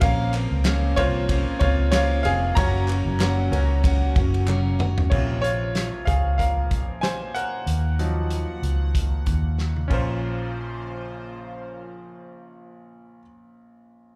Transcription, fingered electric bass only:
0.02 0.48 A#1 loud
0.51 0.94 C#2 loud
0.97 1.43 C2 loud
1.61 2.21 C#2 medium
2.25 2.54 F1 medium
2.57 3.03 F#1 loud
3.06 3.49 F#1 loud
3.52 4.12 C#2 loud
4.16 5.08 F#1 medium
5.12 5.89 A#1 medium
6.07 6.71 C#2 medium
6.71 7.31 A#1 medium
7.67 8.44 D#2 medium
8.62 9.22 C#2 medium
9.27 9.87 D#2 medium
9.91 13.21 A#1 medium

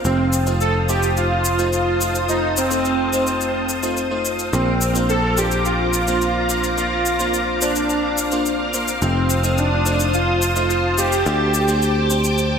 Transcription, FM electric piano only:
0.05 0.21 A3 medium
0.05 0.21 D#4 medium
0.05 0.21 F4 medium
0.05 0.21 C5 medium
0.47 0.86 A3 medium
0.47 0.86 D#4 medium
0.47 0.85 F4 medium
0.47 0.86 C5 loud
0.89 1.42 A3 medium
0.89 1.42 D#4 medium
0.89 1.42 F4 medium
0.89 1.42 C5 loud
1.59 1.98 A3 medium
1.59 1.98 D#4 medium
1.59 1.98 F4 medium
1.59 1.98 C5 loud
2.01 2.17 A3 medium
2.01 2.17 D#4 medium
2.01 2.17 F4 medium
2.01 2.17 C5 medium
2.29 2.45 A3 medium
2.29 2.45 D#4 medium
2.29 2.45 F4 medium
2.29 2.45 C5 medium
2.71 3.10 A3 medium
2.71 3.10 D#4 medium
2.71 3.10 F4 medium
2.71 3.10 C5 medium
3.13 3.66 A3 medium
3.13 3.66 D#4 medium
3.13 3.66 F4 medium
3.13 3.66 C5 medium
3.83 3.99 A3 medium
3.83 3.99 D#4 medium
3.83 3.99 F4 medium
3.83 3.99 C5 loud
4.11 4.50 A3 medium
4.11 4.50 D#4 medium
4.11 4.50 F4 medium
4.11 4.50 C5 medium
4.53 4.69 A#3 medium
4.53 4.69 D4 medium
4.53 4.69 F4 medium
4.53 4.69 C5 medium
4.95 5.34 A#3 medium
4.95 5.34 D4 medium
4.95 5.34 F4 medium
4.95 5.34 C5 loud
5.38 5.90 A#3 medium
5.38 5.90 D4 medium
5.38 5.90 F4 medium
5.38 5.90 C5 loud
6.08 6.46 A#3 medium
6.08 6.46 D4 medium
6.08 6.46 F4 medium
6.08 6.46 C5 loud
6.50 6.66 A#3 medium
6.50 6.66 D4 medium
6.50 6.66 F4 medium
6.50 6.66 C5 medium
6.78 6.94 A#3 medium
6.78 6.94 D4 medium
6.78 6.94 F4 medium
6.78 6.94 C5 medium
7.20 7.58 A#3 medium
7.20 7.58 D4 medium
7.20 7.58 F4 medium
7.20 7.58 C5 medium
7.62 8.14 A#3 medium
7.62 8.15 D4 medium
7.62 8.15 F4 medium
7.62 8.15 C5 loud
8.32 8.71 A#3 medium
8.32 8.71 D4 medium
8.32 8.71 F4 medium
8.32 8.71 C5 loud
8.74 8.90 A#3 medium
8.74 8.90 D4 medium
8.74 8.90 F4 medium
8.74 8.90 C5 medium
9.02 9.18 A3 medium
9.02 9.18 D#4 medium
9.02 9.18 F4 medium
9.02 9.18 C5 medium
9.44 9.83 A3 medium
9.44 9.83 D#4 medium
9.44 9.83 F4 medium
9.44 9.83 C5 medium
9.86 10.39 A3 medium
9.86 10.39 D#4 medium
9.86 10.39 F4 medium
9.86 10.39 C5 loud
10.56 10.95 A3 medium
10.56 10.95 D#4 medium
10.56 10.95 F4 medium
10.56 10.95 C5 loud
10.98 11.14 A3 medium
10.98 11.14 D#4 medium
10.98 11.14 F4 medium
10.98 11.14 C5 medium
11.26 11.42 A3 medium
11.26 11.42 D4 medium
11.26 11.42 G4 medium
11.26 11.42 C5 medium
11.68 12.07 A3 medium
11.68 12.07 D4 medium
11.68 12.07 G4 medium
11.68 12.07 C5 medium
12.10 12.59 A3 medium
12.10 12.59 D4 medium
12.10 12.59 G4 medium
12.10 12.59 C5 loud

